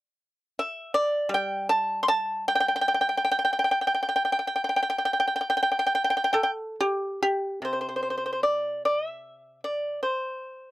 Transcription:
0.59 E5
0.94 D5
1.29 G3
1.34 G5
1.69 A5
2.03 C6
2.08 A5
2.48 G5
2.55 G5
2.60 G5
2.68 G5
2.76 G5
2.81 G5
2.88 G5
2.94 G5
3.01 G5
3.09 G5
3.17 G5
3.25 G5
3.32 G5
3.39 G5
3.45 G5
3.53 G5
3.59 G5
3.64 G5
3.71 G5
3.81 G5
3.87 G5
3.94 G5
4.03 G5
4.09 G5
4.16 G5
4.25 G5
4.32 G5
4.39 G5
4.47 G5
4.56 G5
4.64 G5
4.69 G5
4.76 G5
4.83 G5
4.90 G5
4.98 G5
5.05 G5
5.13 G5
5.20 G5
5.28 G5
5.36 G5
5.41 G5
5.50 G5
5.57 G5
5.63 G5
5.72 G5
5.79 G5
5.86 G5
5.95 G5
6.04 G5
6.10 G5
6.17 G5
6.24 G5
6.33 A4 G5
6.43 G5
6.81 G4
7.23 G4
7.62 C3 C5
7.73 C5
7.81 C5
7.89 C5
7.96 C5
8.03 C5
8.10 C5
8.17 C5
8.26 C5
8.33 C5
8.43 D5
8.85 D5
9.07 E5
9.64 D5
10.03 C5

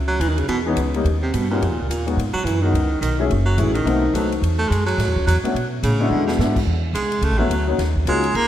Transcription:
Already playing: C#2
0.08 F#3
0.20 D#2 E3, hi-hat pedal, ride
0.29 D#3
0.38 C#3, ride
0.48 E2 B2, ride
0.66 E3 G#3 B3 C#4 D#4
0.76 C#2, hi-hat pedal, ride
0.94 G3 A#3 B3 C#4 D#4, ride
1.04 D#2, ride
1.22 C3
1.34 G2 B2, hi-hat pedal, ride
1.51 A#2 G3 A#3 B3 C#4 D#4
1.62 F2, ride
1.71 D#2
1.80 C#2
1.89 D#2 A#2, hi-hat pedal, ride
2.06 F#3 G#3 B3 D#4 F#4, ride
2.17 G#2, ride
2.33 F#3, muted upright bass stroke
2.44 F#2 E3, hi-hat pedal, ride
2.62 D#3 F#3 G#3 B3 D#4 F#4
2.72 C#2, ride
3.01 B1 D#3, hi-hat pedal, ride
3.19 F#3 A3 C#4 E4 G#4
3.30 F#1, ride
3.45 F#3
3.57 A1 E3 F#3 A3 C#4 E4 G#4, hi-hat pedal, ride
3.74 D#3, ride
3.85 B1 A3 B3 C4 D#4 F#4, ride
4.13 C2 F#3 A3 B3 C4 D#4 A4, hi-hat pedal, ride
4.32 ride
4.42 E2, ride
4.58 A3
4.70 F#2 G#3, hi-hat pedal, ride
4.86 F#3, ride
4.98 G#2, snare, ride
5.07 E2
5.16 C#2, kick
5.27 E2 F#3, hi-hat pedal, ride
5.43 A3 B3 C#4 D4 F#4, muted upright bass stroke, ride
5.54 B2, ride
5.83 A2 C#3, hi-hat pedal, ride
5.99 G#3 B3 D4 E4 F#4
6.10 E2 D3
6.26 B2, snare
6.38 G#2 G#3 B3 D4 E4 F#4, snare, hi-hat pedal
6.56 kick, crash
6.66 E2
6.93 C2 G#3, hi-hat pedal, ride
7.12 ride
7.22 C#2 A3, ride
7.31 A1
7.38 F#1 F#3 A3 B3 C#4 E4 F#4
7.49 D2, hi-hat pedal, ride
7.66 F#3 A#3 C#4 D#4 F#4
7.78 D#2, snare, ride
7.96 kick
8.05 C#2 F#3 G#3 A#3 C#4 D#4 F4, hi-hat pedal, ride
8.24 ride
8.34 C2 A#3, ride

